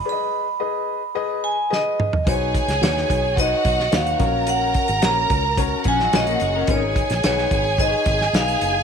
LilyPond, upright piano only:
\new Staff \with { instrumentName = "Upright piano" } { \time 4/4 \key gis \dorian \tempo 4 = 109 <gis' b' d'' dis''>8 r8 <gis' b' dis''>8 r8 <gis' b' dis''>8 r8 <gis' b' dis''>8 r8 | <dis' fis' b' bis' cis''>8 r8 <d' dis' fis' b' cis''>8 r8 <dis' fis' b' bis' cis''>8 r8 <dis' fis' b' cis''>8 <cis' fis' ais' cis''>8~ | <cis' fis' ais' cis''>8 r8 <cis' fis' ais' cis''>8 r8 <cis' fis' ais' cis''>8 r8 <cis' fis' ais' cis''>8 r8 | <dis' gis' b' cis'' dis''>8 r8 <dis' gis' b' fis''>8 r8 <dis' gis' b' bis' cis''>8 r8 <dis' gis' b' dis''>8 r8 | }